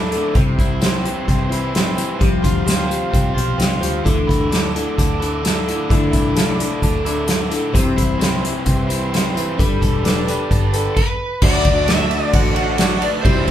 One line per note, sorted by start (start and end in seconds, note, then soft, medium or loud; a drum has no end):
0.00 0.17 D2 medium
0.00 0.13 A3 soft
0.00 0.13 D4 soft
0.00 0.35 D4 medium
0.00 0.12 E4 medium
0.00 0.34 E4 medium
0.00 0.11 A4 medium
0.00 0.32 A4 medium
0.00 0.31 D5 medium
0.00 2.16 E5 medium
0.00 0.32 D6 medium
0.10 0.34 D3 medium
0.10 0.35 E4 medium
0.10 0.35 A4 medium
0.10 closed hi-hat medium
0.14 0.35 A3 soft
0.14 0.36 D4 soft
0.35 0.54 C2 loud
0.35 1.50 C3 medium
0.35 0.81 C3 medium
0.35 0.81 E3 medium
0.35 0.80 G3 medium
0.35 0.81 C4 medium
0.35 0.81 E4 medium
0.35 2.19 G4 medium
0.35 0.82 C5 medium
0.35 4.03 C5 medium
0.35 4.03 C6 medium
0.35 kick loud
0.35 closed hi-hat medium
0.58 1.14 C2 medium
0.58 1.51 E4 medium
0.58 kick medium
0.58 closed hi-hat medium
0.80 1.04 G3 medium
0.80 1.04 C4 medium
0.80 1.28 C4 medium
0.80 1.03 E4 medium
0.80 1.02 C5 medium
0.80 snare loud
0.80 closed hi-hat medium
1.03 1.96 E3 medium
1.03 1.50 G3 soft
1.03 1.50 C4 soft
1.03 1.49 E4 soft
1.03 1.48 C5 medium
1.03 closed hi-hat medium
1.28 2.02 C2 medium
1.28 1.74 C4 medium
1.28 kick medium
1.28 closed hi-hat medium
1.49 1.97 G3 soft
1.49 1.97 C4 soft
1.49 1.97 E4 soft
1.49 2.21 E4 medium
1.49 1.96 C5 medium
1.49 closed hi-hat medium
1.75 2.21 C4 medium
1.75 snare loud
1.75 closed hi-hat medium
1.97 2.20 E3 medium
1.97 2.19 G3 soft
1.97 2.20 C4 soft
1.97 2.20 E4 medium
1.97 2.20 C5 medium
1.97 closed hi-hat medium
2.19 2.39 C2 medium
2.19 3.35 C3 medium
2.19 2.66 C3 medium
2.19 2.66 F3 medium
2.19 2.63 G3 medium
2.19 2.64 C4 medium
2.19 4.03 G4 medium
2.19 2.65 G4 medium
2.19 2.66 C5 medium
2.19 4.03 F5 medium
2.19 kick loud
2.19 closed hi-hat medium
2.43 3.00 D2 medium
2.43 3.33 F4 medium
2.43 kick medium
2.43 closed hi-hat medium
2.65 2.89 G3 medium
2.65 2.89 C4 medium
2.65 3.10 C4 medium
2.65 2.89 G4 medium
2.65 2.89 C5 medium
2.65 closed hi-hat medium
2.69 snare loud
2.89 3.80 F3 medium
2.89 3.36 G3 soft
2.89 3.36 C4 soft
2.89 3.35 G4 soft
2.89 3.34 C5 medium
2.89 closed hi-hat medium
3.11 3.32 C2 medium
3.11 3.57 C4 medium
3.11 kick medium
3.11 closed hi-hat medium
3.34 3.56 B1 medium
3.34 3.82 G3 soft
3.34 3.81 C4 soft
3.34 4.04 F4 medium
3.34 3.81 G4 soft
3.34 3.80 C5 medium
3.34 closed hi-hat medium
3.58 3.79 C2 medium
3.58 4.05 C4 medium
3.58 snare medium
3.58 closed hi-hat medium
3.81 4.02 D2 medium
3.81 4.04 F3 medium
3.81 4.05 G3 soft
3.81 4.05 C4 soft
3.81 4.05 G4 soft
3.81 4.04 C5 soft
3.81 closed hi-hat medium
4.04 4.24 D2 loud
4.04 4.51 D3 medium
4.04 4.74 D3 medium
4.04 4.55 E3 medium
4.04 4.50 A3 medium
4.04 4.50 D4 medium
4.04 4.52 E4 medium
4.04 7.71 A4 medium
4.04 4.52 A4 medium
4.04 7.71 D5 medium
4.04 7.71 E5 medium
4.04 7.71 D6 medium
4.04 kick loud
4.04 closed hi-hat medium
4.27 4.84 D2 medium
4.27 5.20 E4 medium
4.27 kick medium
4.27 closed hi-hat medium
4.51 4.74 A3 medium
4.51 4.97 D4 medium
4.51 4.74 D4 medium
4.51 4.74 E4 medium
4.51 4.72 A4 medium
4.51 snare loud
4.51 closed hi-hat medium
4.73 5.65 D3 medium
4.73 5.21 A3 soft
4.73 5.21 D4 soft
4.73 5.21 E4 medium
4.73 5.19 A4 medium
4.73 closed hi-hat medium
4.98 5.72 D2 medium
4.98 5.42 D4 medium
4.98 kick medium
4.98 closed hi-hat medium
5.20 5.68 A3 soft
5.20 5.67 D4 medium
5.20 6.11 E4 medium
5.20 5.68 E4 soft
5.20 5.66 A4 soft
5.20 closed hi-hat medium
5.43 6.35 D4 medium
5.43 snare loud
5.43 closed hi-hat medium
5.67 5.88 D3 medium
5.67 5.90 A3 soft
5.67 5.90 D4 soft
5.67 5.90 E4 soft
5.67 5.90 A4 soft
5.67 closed hi-hat medium
5.89 6.58 D3 medium
5.89 6.09 D3 medium
5.89 6.36 D3 medium
5.89 6.41 E3 medium
5.89 6.35 A3 medium
5.89 6.36 D4 medium
5.89 6.38 E4 medium
5.89 6.37 A4 medium
5.89 kick loud
5.89 closed hi-hat medium
6.12 6.69 C2 medium
6.12 7.04 E4 medium
6.12 kick medium
6.12 closed hi-hat medium
6.36 6.59 A3 medium
6.36 6.82 D4 medium
6.36 6.58 D4 medium
6.36 6.58 E4 medium
6.36 6.57 A4 medium
6.36 snare loud
6.36 closed hi-hat medium
6.58 7.49 D3 medium
6.58 7.06 A3 soft
6.58 7.05 D4 soft
6.58 7.05 E4 soft
6.58 7.05 A4 medium
6.58 closed hi-hat medium
6.82 7.56 D2 medium
6.82 7.27 D4 medium
6.82 kick medium
6.82 closed hi-hat medium
7.05 7.52 A3 soft
7.05 7.50 D4 soft
7.05 7.74 E4 medium
7.05 7.50 E4 medium
7.05 7.49 A4 medium
7.05 closed hi-hat medium
7.28 7.74 D4 medium
7.28 snare loud
7.28 closed hi-hat medium
7.50 7.74 D3 medium
7.50 7.73 A3 soft
7.50 7.74 D4 soft
7.50 7.73 E4 soft
7.50 7.74 A4 medium
7.50 closed hi-hat medium
7.72 7.93 C2 loud
7.72 8.19 C3 medium
7.72 8.89 C3 medium
7.72 8.20 E3 medium
7.72 8.19 G3 medium
7.72 8.18 C4 medium
7.72 8.19 E4 medium
7.72 10.93 G4 medium
7.72 9.56 C5 medium
7.72 8.19 C5 loud
7.72 9.56 E5 medium
7.72 9.56 C6 medium
7.72 kick loud
7.72 closed hi-hat medium
7.96 8.52 C2 medium
7.96 8.87 E4 medium
7.96 kick medium
7.96 closed hi-hat medium
8.19 8.43 G3 medium
8.19 8.64 C4 medium
8.19 8.43 C4 medium
8.19 8.42 E4 medium
8.19 8.41 C5 medium
8.19 snare loud
8.19 closed hi-hat medium
8.42 9.34 E3 medium
8.42 8.90 G3 soft
8.42 8.90 C4 soft
8.42 8.89 E4 soft
8.42 8.89 C5 medium
8.42 closed hi-hat medium
8.65 9.40 C2 medium
8.65 9.10 C4 medium
8.65 kick medium
8.65 closed hi-hat medium
8.88 9.35 C4 soft
8.88 9.57 E4 medium
8.88 9.34 E4 soft
8.88 9.34 C5 medium
8.88 closed hi-hat medium
8.93 9.36 G3 soft
9.11 9.58 C4 medium
9.11 snare loud
9.11 closed hi-hat medium
9.35 9.58 E3 medium
9.35 9.57 G3 soft
9.35 9.58 C4 soft
9.35 9.58 E4 medium
9.35 9.58 C5 medium
9.35 closed hi-hat medium
9.58 9.77 G1 medium
9.58 10.02 G3 medium
9.58 10.26 G3 medium
9.58 10.03 D4 medium
9.58 10.05 A4 medium
9.58 10.05 B4 medium
9.58 10.95 B4 medium
9.58 10.95 D5 medium
9.58 10.96 A5 medium
9.58 kick loud
9.58 closed hi-hat medium
9.81 10.37 E1 medium
9.81 10.73 A4 medium
9.81 kick medium
9.81 closed hi-hat medium
10.03 10.27 G3 medium
10.03 10.50 D4 medium
10.03 10.27 D4 medium
10.03 10.26 A4 medium
10.03 10.26 B4 medium
10.03 snare loud
10.03 closed hi-hat medium
10.27 10.96 G3 medium
10.27 10.74 D4 soft
10.27 10.73 A4 soft
10.27 10.72 B4 medium
10.27 closed hi-hat medium
10.51 10.87 G1 medium
10.51 10.96 D4 medium
10.51 kick medium
10.51 closed hi-hat medium
10.73 10.97 D4 soft
10.73 10.96 A4 medium
10.73 10.97 A4 medium
10.73 10.96 B4 medium
10.73 closed hi-hat medium
10.97 11.43 B4 medium
10.97 kick loud
10.97 crash medium
11.42 11.60 D2 loud
11.42 11.64 D3 medium
11.42 12.55 D3 loud
11.42 11.65 A3 medium
11.42 12.55 A3 medium
11.42 11.65 D4 medium
11.42 12.54 D4 medium
11.42 12.17 F#4 medium
11.42 11.65 F#4 medium
11.42 13.24 F#4 medium
11.42 12.17 A4 medium
11.42 13.23 A4 medium
11.42 12.18 D5 medium
11.42 13.24 D5 medium
11.42 11.64 D5 medium
11.42 11.90 D5 loud
11.42 13.24 A5 medium
11.42 kick loud
11.42 crash loud
11.46 12.54 F#4 medium
11.65 12.20 D2 medium
11.65 11.88 D4 soft
11.65 11.88 F#4 soft
11.65 11.88 D5 medium
11.65 kick medium
11.65 ride medium
11.87 12.33 A3 medium
11.87 12.33 D4 medium
11.87 12.34 F#4 medium
11.87 12.34 E5 medium
11.87 snare loud
11.87 ride loud
11.91 12.34 D5 medium
12.11 ride medium
12.33 13.07 A1 medium
12.33 12.79 D3 medium
12.33 12.77 A3 medium
12.33 12.79 D4 medium
12.33 12.79 F#4 medium
12.33 12.80 D5 medium
12.33 13.05 F#5 medium
12.33 kick medium
12.33 ride loud
12.55 12.77 D3 medium
12.55 12.78 A3 medium
12.55 12.77 D4 medium
12.55 12.77 F#4 medium
12.55 ride medium
12.78 13.23 D3 medium
12.78 13.24 A3 medium
12.78 13.23 A3 medium
12.78 13.24 D4 medium
12.78 13.25 F#4 medium
12.78 13.24 F#4 medium
12.78 13.25 D5 medium
12.78 snare loud
12.78 ride loud
13.01 13.21 F#4 medium
13.01 13.21 A4 medium
13.01 13.21 B4 medium
13.01 13.07 D5 medium
13.01 ride medium
13.21 13.43 C2 loud
13.21 13.51 C3 medium
13.21 13.47 C3 medium
13.21 13.51 E3 loud
13.21 13.47 E3 medium
13.21 13.51 G3 loud
13.21 13.47 G3 medium
13.21 13.46 C4 medium
13.21 13.51 C4 medium
13.21 13.51 E4 medium
13.21 13.46 E4 medium
13.21 13.51 G4 medium
13.21 13.51 C5 medium
13.21 kick loud
13.21 ride medium
13.26 13.51 E4 medium
13.26 13.51 G4 medium
13.26 13.45 C5 medium
13.26 13.51 C5 medium
13.26 13.51 E5 medium
13.26 13.51 C6 medium
13.46 13.51 C4 medium
13.46 13.51 E4 medium
13.46 13.51 C5 medium
13.46 kick medium
13.46 ride medium